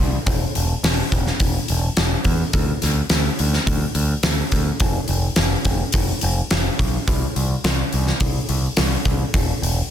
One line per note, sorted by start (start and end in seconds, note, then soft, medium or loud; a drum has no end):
0.00 0.16 C2 medium
0.26 0.44 E1 medium
0.26 kick medium
0.26 open hi-hat medium
0.55 0.73 E1 medium
0.55 open hi-hat soft
0.83 1.01 E1 medium
0.83 snare medium
0.83 open hi-hat medium
1.12 1.29 E1 medium
1.12 kick medium
1.12 open hi-hat soft
1.27 snare soft
1.40 1.58 E1 medium
1.40 kick medium
1.40 open hi-hat medium
1.68 1.87 E1 medium
1.68 open hi-hat soft
1.97 2.15 E1 medium
1.97 snare loud
1.97 open hi-hat medium
2.24 2.43 E2 medium
2.24 kick medium
2.24 open hi-hat soft
2.53 2.72 D2 medium
2.53 kick loud
2.53 open hi-hat medium
2.82 3.01 D2 medium
2.82 snare soft
2.82 open hi-hat soft
3.10 3.28 D2 medium
3.10 snare medium
3.10 open hi-hat medium
3.39 3.57 D2 medium
3.39 open hi-hat soft
3.53 snare soft
3.66 3.84 D2 medium
3.66 kick medium
3.66 open hi-hat medium
3.95 4.13 D2 medium
3.95 open hi-hat soft
4.23 4.41 D2 medium
4.23 snare medium
4.23 open hi-hat medium
4.52 4.70 D2 medium
4.52 kick medium
4.52 open hi-hat soft
4.80 4.98 F1 medium
4.80 kick loud
4.80 open hi-hat medium
5.08 5.27 F1 medium
5.08 open hi-hat soft
5.36 5.55 F1 medium
5.36 snare medium
5.36 open hi-hat medium
5.65 5.83 F1 medium
5.65 kick medium
5.65 open hi-hat soft
5.92 6.12 F1 medium
5.92 kick loud
5.92 open hi-hat medium
6.21 6.40 F1 medium
6.21 open hi-hat soft
6.51 6.69 F1 medium
6.51 snare loud
6.51 open hi-hat medium
6.79 6.97 B1 medium
6.79 kick medium
6.79 open hi-hat soft
7.08 7.25 C2 medium
7.08 kick loud
7.08 open hi-hat medium
7.36 7.54 C2 medium
7.36 open hi-hat soft
7.64 7.82 C2 medium
7.64 snare loud
7.64 open hi-hat medium
7.92 8.11 C2 medium
7.92 open hi-hat soft
8.07 snare soft
8.20 8.38 C2 medium
8.20 kick loud
8.20 open hi-hat medium
8.49 8.67 C2 medium
8.49 open hi-hat soft
8.77 8.96 C2 medium
8.77 snare loud
8.77 open hi-hat medium
9.05 9.23 C2 medium
9.05 kick medium
9.05 open hi-hat soft
9.34 9.52 E1 medium
9.34 kick loud
9.34 open hi-hat medium
9.62 9.80 E1 medium
9.62 open hi-hat soft